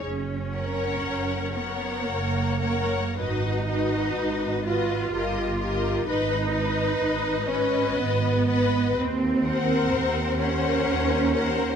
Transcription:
0.03 double bass section F#1, cello section C#4
0.54 viola section A#4, violin section C#5 F#5
1.04 double bass section F#1
1.54 cello section B3, viola section A#4, violin section C#5 F#5
2.06 double bass section F#1, cello section A#3
2.61 viola section A#4, violin section C#5 F#5
3.17 double bass section G#1, cello section D#4, viola section F#4, violin section B4 D#5
3.69 viola section F#4, violin section B4 D#5
4.17 double bass section G#1
4.66 cello section F4, viola section F#4, violin section B4 D#5
5.12 double bass section G1, viola section G4, violin section A#4 D#5
5.59 viola section G4, violin section A#4 D#5
6.06 double bass section G#1, cello section D#4, viola section B4, violin section B4 D#5
6.53 viola section B4, violin section B4 D#5
7.00 double bass section G#1
7.47 cello section C#4, violin section B4 D#5, viola section B4
7.97 double bass section G#1, cello section B3
8.48 viola section B4, violin section B4 D#5
8.97 double bass section D#2, cello section C4
9.44 viola section A#4, violin section C5 F#5
9.92 double bass section D#2
10.40 cello section C#4, viola section A#4, violin section C5 F#5
10.87 double bass section D#2
11.33 viola section A#4, violin section C5 F#5

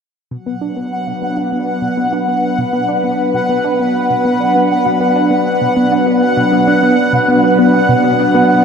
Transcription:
0.31 synth arpeggio sound B2, analog synth pad F#3, synth texture F#5
0.46 synth arpeggio sound B3
0.56 analog synth pad B4
0.61 synth arpeggio sound D4
0.76 synth arpeggio sound B3, analog synth pad B3
0.89 analog synth pad D4
1.07 synth arpeggio sound B2
1.22 synth arpeggio sound B3
1.37 synth arpeggio sound D4
1.52 synth arpeggio sound B3
1.82 synth arpeggio sound B2
1.97 synth arpeggio sound B3
2.13 synth arpeggio sound D4
2.28 synth arpeggio sound B3
2.58 synth arpeggio sound B2
2.73 synth arpeggio sound B3
2.88 synth arpeggio sound D4
3.04 synth arpeggio sound B3
3.34 synth arpeggio sound B2
3.49 synth arpeggio sound B3
3.64 synth arpeggio sound D4
3.80 synth arpeggio sound B3
4.10 synth arpeggio sound B2
4.25 synth arpeggio sound B3
4.40 synth arpeggio sound D4
4.55 synth arpeggio sound B3
4.85 synth arpeggio sound B2
5.00 synth arpeggio sound B3
5.16 synth arpeggio sound D4
5.31 synth arpeggio sound B3
5.61 synth arpeggio sound B2
5.77 synth arpeggio sound B3
5.92 synth arpeggio sound D4
6.07 synth arpeggio sound B3
6.37 synth arpeggio sound B2
6.52 synth arpeggio sound B3
6.68 synth arpeggio sound D4
6.83 synth arpeggio sound B3
7.13 synth arpeggio sound B2
7.28 synth arpeggio sound B3
7.44 synth arpeggio sound D4
7.59 synth arpeggio sound B3
7.89 synth arpeggio sound B2
8.04 synth arpeggio sound B3
8.20 synth arpeggio sound D4
8.35 synth arpeggio sound B3

